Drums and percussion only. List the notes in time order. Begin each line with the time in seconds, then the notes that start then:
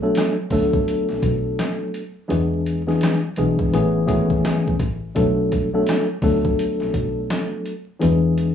0.15 cross-stick, snare, closed hi-hat
0.50 kick, open hi-hat
0.73 kick
0.88 closed hi-hat
1.09 snare
1.22 kick, closed hi-hat
1.59 cross-stick, snare, closed hi-hat
1.94 closed hi-hat
2.30 closed hi-hat
2.66 closed hi-hat
2.89 snare
3.01 cross-stick, snare, closed hi-hat
3.36 closed hi-hat
3.59 kick
3.74 closed hi-hat
4.08 kick, closed hi-hat
4.30 kick
4.45 cross-stick, snare, closed hi-hat
4.67 kick
4.80 kick, closed hi-hat
5.16 kick, closed hi-hat
5.52 kick, closed hi-hat
5.86 cross-stick, snare, closed hi-hat
6.22 kick, open hi-hat
6.45 kick
6.59 closed hi-hat
6.80 snare
6.94 kick, closed hi-hat
7.30 cross-stick, snare, closed hi-hat
7.65 closed hi-hat
8.01 closed hi-hat
8.38 closed hi-hat